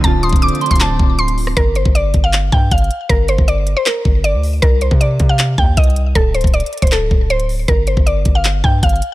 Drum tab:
HH |x-----------x---x---x---x---x---x---x--x--x--x--x-----------------------x-----x-----o-----------|x-----------x-----------x-----------x-----------x-----------------------x---x---x---x-----------|x-----------x-----------x-----------x-----------x-----------------------x-----------o-----------|x-----------x-----------x-----------x-----------x-----------------------x---x---x---x-----------|
CP |------------------------------------------------x-----------------------------------------------|------------------------------------------------x-----------------------------------------------|------------------------------------------------x-----------------------------------------------|------------------------------------------------x-----------------------------------------------|
SD |------------------------------------------------------------------------------------------r-----|------------------------------------------------------------------------------------------------|------------------------------------------------------------------------------------------------|------------------------------------------------------------------------------------------------|
BD |o-----------------o-----------------------o-----------------o-----------------------------------|o-----------------o-----------------o-----------------------o-----------o-----------------------|o-----------------o-----------------------------------------o-----------------------------------|o-----------------o-----------------o-----------------------o-----------o-----------------------|

HH |x-----------x---x---x---x---x---x---x--x--x--x--x-----------------------x-----x-----o-----------|x-----------x-----------x-----------x-----------x-----------------------x---x---x---x-----------|
CP |------------------------------------------------x-----------------------------------------------|------------------------------------------------x-----------------------------------------------|
SD |------------------------------------------------------------------------------------------------|------------------------------------------------------------------------------------------------|
BD |o-----------------o-----------------------o-----------------o-----------------------------------|o-----------------o-----------------o-----------------------o-----------o-----------------------|